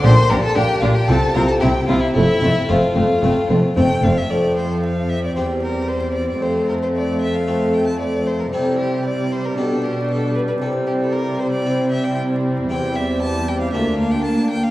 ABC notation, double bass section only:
X:1
M:4/4
L:1/8
Q:1/4=114
K:F
V:1 name="Double bass section" clef=bass
B,,, B,,, B,,, B,,, C,, C,, C,, C,, | F,,, F,,, F,,, F,,, F,,, F,,, F,,, F,,, | z8 | z8 |
z8 | z8 | z8 |]